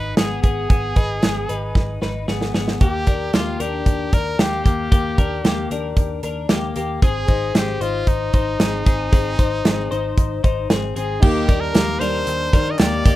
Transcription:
Already playing: G#1 D#4 B4
0.17 G#1 B3 G#4, snare, closed hi-hat
0.43 G#1 B3 G#4, kick, closed hi-hat
0.70 G#1 B3 G#4, kick, closed hi-hat
0.96 G#1 D#4 B4, kick, closed hi-hat
1.23 G#1 B3 G#4, snare, closed hi-hat
1.49 G#1 D#4 B4, closed hi-hat
1.75 G#1, kick, snare
2.02 G#1 D#4 B4, snare
2.28 G#1 B3 G#4, snare
2.41 snare
2.54 G#1 B3 G#4, snare
2.68 snare
2.81 D#2 A#3 G4, kick, closed hi-hat
3.07 D#2 D4 A#4, kick, closed hi-hat
3.34 D#2 A#3 F4 G4, snare, closed hi-hat
3.60 D#2 D4 G4 A#4, closed hi-hat
3.86 D#2, kick, closed hi-hat
4.13 D#2 D4 A#4, kick, snare, closed hi-hat
4.39 D#2 A#3 G4, snare, closed hi-hat
4.65 D#2 A#3 G4, kick, closed hi-hat
4.92 D#2 A#3 G4, kick, closed hi-hat
5.18 D#2 D4 A#4, kick, closed hi-hat
5.44 D#2 A#3 G4, snare, closed hi-hat
5.71 D#2 D4 A#4, closed hi-hat
5.97 D#2, kick, closed hi-hat
6.23 D#2 D4 A#4, closed hi-hat
6.49 D#2 A#3 G4, snare, closed hi-hat
6.76 D#2 A#3 G4, closed hi-hat
7.02 G#1 C4 G#4, kick, closed hi-hat
7.28 G#1 D#4 C5, kick, closed hi-hat
7.54 G#1 C4 G4 G#4, snare, closed hi-hat
7.80 G#1 D#4 F4 C5, closed hi-hat
8.07 G#1 D#4, kick, closed hi-hat
8.33 G#1 D#4 C5, kick, closed hi-hat
8.60 G#1 C4 G#4, snare, closed hi-hat
8.86 G#1 C4 G#4, kick, closed hi-hat
9.12 G#1 C4 G#4, kick, closed hi-hat
9.39 G#1 D#4 C5, kick, closed hi-hat
9.65 G#1 C4 G#4, snare, closed hi-hat
9.91 G#1 D#4 C5, closed hi-hat
10.17 G#1, kick, closed hi-hat
10.44 G#1 D#4 C5, kick, closed hi-hat
10.70 G#1 C4 G#4, snare, closed hi-hat
10.96 G#1 C4 G#4, closed hi-hat
11.20 D#2 D#3 G3 A#3 D#4 G4 A#4, kick, crash
11.48 D#2 D4 A#4, kick, closed hi-hat
11.61 A#4
11.74 D#2 A#3 G4, snare, clap, closed hi-hat
11.99 D#2 D#3 G3 A#3 D4 D#4 A#4 C5, closed hi-hat
12.27 D#2, clap, closed hi-hat
12.52 D#3 G3 A#3 D4 D#4 A#4, kick, snare, closed hi-hat
12.71 D#5
12.78 D#2 D#3 G3 A#3 D#4 G4 D5, snare, clap, closed hi-hat
13.04 D2 D#3 G3 A#3 D#4 G4, kick, closed hi-hat

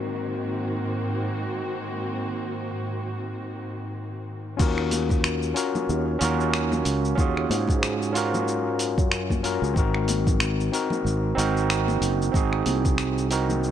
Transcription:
Already playing: G#2 D#3 A#3 C4 D#4 F#4 A#4
4.57 D#2 C#4 F4 F#4, kick, crash, cabasa
4.62 A#4
4.78 finger snap
4.91 open hi-hat, high conga, cabasa
5.09 kick, low conga, cabasa
5.24 finger snap, cabasa
5.42 cabasa
5.54 C#4 F4 F#4 A#4, open hi-hat, cabasa
5.75 high conga, low conga, cabasa
5.89 D#2, cabasa
6.19 D#2 C#4 F4 F#4, open hi-hat, cabasa
6.24 A#4
6.40 cabasa
6.54 finger snap, cabasa
6.72 high conga, low conga, cabasa
6.85 C#2, open hi-hat, cabasa
7.05 cabasa
7.15 D#2 C#4 F4 F#4, kick, cabasa
7.20 G#4
7.37 finger snap
7.49 G#2, open hi-hat, high conga, cabasa
7.68 kick, low conga, cabasa
7.83 finger snap, cabasa
8.02 cabasa
8.13 C#4 F4 F#4, open hi-hat, cabasa
8.17 A#4
8.34 high conga, low conga, cabasa
8.48 cabasa
8.79 open hi-hat, cabasa
8.98 F#2, kick, cabasa
9.12 finger snap, cabasa
9.30 kick, high conga, low conga, cabasa
9.43 C#4 F4 F#4 A#4, open hi-hat, cabasa
9.62 C#2, cabasa
9.74 G#1 C4 D#4 F#4, kick, cabasa
9.79 A#4
9.94 finger snap
10.08 open hi-hat, high conga, cabasa
10.27 kick, low conga, cabasa
10.40 finger snap, cabasa
10.60 cabasa
10.72 C4 D#4 F#4 A#4, open hi-hat, cabasa
10.90 high conga, low conga, cabasa
11.05 G#1, cabasa
11.35 G#1 C4 D#4 F#4, open hi-hat
11.39 A#4, cabasa
11.57 cabasa
11.70 finger snap, cabasa
11.88 high conga, low conga, cabasa
12.01 F#1, open hi-hat, cabasa
12.22 cabasa
12.32 G#1 C4 D#4 F#4, kick, cabasa
12.37 G#4
12.53 finger snap
12.66 C2, open hi-hat, high conga, cabasa
12.85 kick, low conga, cabasa
12.98 finger snap, cabasa
13.18 cabasa
13.30 C4 D#4 F#4 A#4, open hi-hat, cabasa
13.49 high conga, low conga, cabasa
13.63 cabasa

